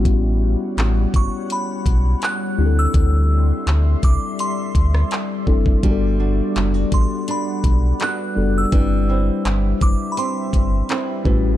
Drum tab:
HH |x---x-x-x-x-x---|x---x-x-x-x-x---|x---x-x-x-x-x---|x---x-x-x-x-x---|
CP |----x-------x---|----x-------x---|----x-------x---|----x-------x---|
SD |----------------|-----------r----|----------------|----------------|
BD |o-----o---o-----|o-----o---o---oo|o-----o---o-----|o-----o---o---o-|